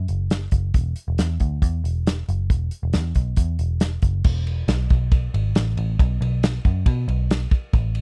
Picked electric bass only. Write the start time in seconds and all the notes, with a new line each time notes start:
0.09 F#1
0.52 F#1
0.74 E1
1.08 E1
1.19 E2
1.40 D2
1.62 E2
1.84 E1
2.29 F#1
2.50 E1
2.83 E1
2.94 E2
3.15 B1
3.37 E2
3.59 E1
4.03 F#1
4.25 E1
4.68 B1
4.91 B1
5.34 G#1
5.56 A1
5.77 A1
5.99 B1
6.21 B1
6.65 F#2
6.86 B2
7.08 B1
7.74 A1